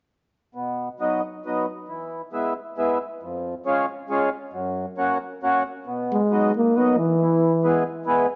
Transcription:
0.55 0.89 B2 soft
1.00 1.21 F#3 medium
1.00 1.21 B3 soft
1.00 1.22 D#4 medium
1.45 1.66 F#3 medium
1.45 1.66 B3 soft
1.45 1.66 D#4 soft
1.88 2.22 E3 soft
2.33 2.53 G#3 medium
2.33 2.54 B3 medium
2.33 2.54 E4 medium
2.78 2.98 G#3 medium
2.78 2.98 B3 soft
2.78 2.98 E4 medium
3.23 3.55 F2 soft
3.66 3.86 G#3 medium
3.66 3.86 C#4 medium
3.66 3.86 F4 medium
4.09 4.29 G#3 medium
4.09 4.30 C#4 medium
4.09 4.30 F4 medium
4.53 4.86 F#2 medium
4.98 5.18 A#3 medium
4.98 5.18 C#4 medium
4.98 5.18 F#4 medium
5.43 5.63 A#3 medium
5.43 5.63 C#4 medium
5.43 5.63 F#4 medium
5.86 6.20 B2 medium
6.12 6.52 G#3 medium
6.31 6.51 F#3 medium
6.31 6.52 B3 medium
6.31 6.52 D#4 medium
6.56 6.78 A#3 medium
6.75 6.96 F#3 medium
6.75 6.96 B3 soft
6.75 6.99 B3 medium
6.75 6.97 D#4 medium
6.98 7.86 E3 medium
7.20 7.53 E3 medium
7.64 7.84 E3 medium
7.64 7.84 G#3 medium
7.64 7.84 B3 medium
8.06 8.26 E3 medium
8.06 8.27 G#3 medium
8.06 8.27 B3 medium

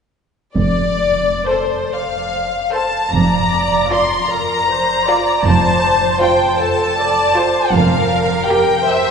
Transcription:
0.55 1.70 F1 soft
0.55 1.70 F2 soft
0.55 1.44 D5 medium
1.48 1.83 A4 soft
1.48 1.94 C5 soft
1.48 1.83 C5 soft
1.94 2.74 F5 soft
2.72 3.02 A4 soft
2.72 3.02 C5 soft
2.72 3.11 A5 medium
3.12 4.09 F1 soft
3.12 4.09 F2 soft
3.12 4.26 D5 soft
3.12 3.92 A#5 medium
3.91 4.20 F4 soft
3.91 4.20 D5 soft
3.91 4.29 C6 medium
4.29 4.68 A#4 soft
4.29 5.46 A#5 medium
4.69 5.08 C5 soft
5.06 5.37 F4 soft
5.06 5.46 D5 soft
5.06 5.37 D5 soft
5.46 6.39 F1 medium
5.46 6.39 F2 soft
5.46 6.60 C5 soft
5.46 6.21 A5 medium
6.21 6.51 F4 soft
6.21 6.51 C5 soft
6.21 6.59 G5 medium
6.59 6.98 A4 soft
6.59 7.72 A5 medium
6.98 7.36 D5 soft
7.36 7.64 F4 soft
7.36 7.63 C5 soft
7.36 7.73 C5 soft
7.73 8.64 F1 medium
7.73 8.64 F2 medium
7.73 8.85 A#4 medium
7.73 8.47 F5 medium
8.47 8.76 G4 soft
8.47 8.76 A#4 soft
8.47 8.85 G5 medium
8.86 9.11 C5 medium
8.86 9.11 E5 medium

